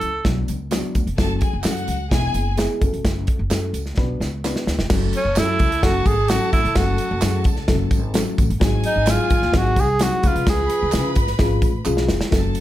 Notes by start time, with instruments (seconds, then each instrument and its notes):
Already playing: tenor saxophone A4
0.01 upright bass C#2, closed hi-hat, tambourine
0.24 upright bass B1, upright piano F#3 B3 D4 F#4, kick, snare, closed hi-hat
0.48 upright bass C#2, closed hi-hat, tambourine
0.71 upright piano F#3 B3 D4 F#4, snare, clap, closed hi-hat, tambourine
0.95 upright bass D2, kick, closed hi-hat, tambourine
1.07 upright bass F1, closed hi-hat
1.17 upright bass F#1, upright piano F#3 A3 C#4 F#4, violin section A4 A5, kick, snare, closed hi-hat, tambourine
1.41 violin section G#4 G#5, kick, closed hi-hat, tambourine
1.53 upright bass F#1
1.64 upright bass F#2, upright piano F#3 A3 C#4 F#4, violin section F#4 F#5, snare, clap, closed hi-hat, tambourine
1.77 closed hi-hat
1.88 upright bass C#2, closed hi-hat, tambourine
2.11 upright bass E1, upright piano G#3 B3 E4 G#4, violin section G#4 G#5, kick, snare, closed hi-hat
2.34 upright bass F#1, closed hi-hat, tambourine
2.57 upright piano G#3 B3 E4 G#4, snare, clap, closed hi-hat, tambourine
2.81 upright bass F#1, upright piano A3 C#4 F#4 G#4, kick, closed hi-hat, tambourine
2.87 upright piano A4
2.93 upright bass F1, closed hi-hat
3.05 upright bass F#1, kick, snare, closed hi-hat, tambourine
3.27 kick, closed hi-hat
3.39 upright bass F#1
3.50 upright bass F#2, upright piano A3 C#4 F#4 A4, snare, clap, closed hi-hat, tambourine
3.73 upright bass C#2, closed hi-hat, tambourine
3.86 snare
3.97 upright bass B1, upright piano B3 D4 F#4 B4, kick, snare
4.20 upright bass C#2, snare, tambourine
4.44 upright piano B3 D4 F#4 B4, snare, clap, tambourine
4.56 snare
4.67 upright bass D2, snare, tambourine
4.79 upright bass F1, snare
4.90 upright bass F#1, upright piano F#3 A3 C#4 F#4 A4, violin section A4 A5, kick, snare, crash, tambourine
5.13 tenor saxophone C#4, closed hi-hat, tambourine
5.25 upright bass F#1
5.36 upright bass F#2, upright piano F#3 A3 C#4 F#4 A4, tenor saxophone E4, snare, clap, closed hi-hat, tambourine
5.59 upright bass C#2, kick, closed hi-hat, tambourine
5.72 closed hi-hat
5.83 upright bass F#1, upright piano F#3 A3 C#4 F#4 A4, tenor saxophone F#4, kick, snare, closed hi-hat, tambourine
6.06 upright bass G#1, tenor saxophone G#4, kick, closed hi-hat, tambourine
6.28 upright piano F#3 A3 C#4 F#4 A4, tenor saxophone F#4, snare, clap, closed hi-hat, tambourine
6.53 upright bass A1, tenor saxophone E4, kick, closed hi-hat, tambourine
6.65 upright bass F1, closed hi-hat
6.75 upright bass F#1, upright piano F#3 A3 C#4 F#4 A4, tenor saxophone F#4, kick, snare, closed hi-hat, tambourine
6.98 closed hi-hat, tambourine
7.11 upright bass F#1
7.22 upright bass F#2, upright piano F#3 A3 C#4 F#4 G#4, snare, clap, closed hi-hat, tambourine
7.44 upright bass C#2, kick, closed hi-hat, tambourine
7.56 snare
7.68 upright bass F#1, upright piano F#3 A3 C#4 F#4 A4, kick, snare, closed hi-hat, tambourine
7.91 upright bass G#1, kick, closed hi-hat, tambourine
8.14 upright piano F#3 A3 C#4 F#4 A4, snare, clap, closed hi-hat, tambourine
8.38 upright bass A1, kick, closed hi-hat, tambourine
8.50 upright bass G1, closed hi-hat
8.60 upright bass G#1, upright piano F#3 G#3 C4 D#4 F#4, violin section G#4 G#5, kick, snare, closed hi-hat, tambourine
8.84 tenor saxophone D#4, closed hi-hat, tambourine
8.96 upright bass G#1
9.06 upright piano F#3 G#3 C4 D#4 F#4, tenor saxophone F4, snare, clap, closed hi-hat, tambourine
9.30 upright bass G#2, kick, closed hi-hat, tambourine
9.42 upright bass D#2, snare
9.52 upright bass G#1, upright piano F#3 G#3 C4 D#4 F#4, kick, snare, closed hi-hat, tambourine
9.57 tenor saxophone F#4
9.76 upright bass C2, kick, closed hi-hat, tambourine
9.80 tenor saxophone G#4
9.99 upright piano F#3 G#3 C4 D#4 F#4, tenor saxophone F#4, snare, clap, closed hi-hat, tambourine
10.23 upright bass C#2, upright piano F3 G#3 C#4 F4 G#4, tenor saxophone F4, violin section B4 B5, kick, closed hi-hat, tambourine
10.35 upright bass C2, closed hi-hat
10.47 upright bass C#2, tenor saxophone G#4, kick, snare, closed hi-hat, tambourine
10.70 closed hi-hat, tambourine
10.82 upright bass C#2
10.92 upright bass C#3, upright piano F3 G#3 C#4 F4 B4, snare, clap, closed hi-hat, tambourine
11.15 upright bass G#1, kick, closed hi-hat, tambourine
11.27 snare, closed hi-hat
11.39 upright bass G#1, upright piano F3 G#3 C#4 F4 G#4, kick, snare, closed hi-hat, tambourine
11.62 upright bass A1, kick, closed hi-hat, tambourine
11.85 upright bass B1, upright piano F3 G#3 C#4 F4 G#4, clap, tambourine
11.97 snare
12.09 upright bass F1, snare, tambourine
12.21 snare
12.31 upright bass F#1, upright piano F#3 A3 C#4 F#4 A4, violin section A4 A5, kick, snare, closed hi-hat, tambourine
12.55 closed hi-hat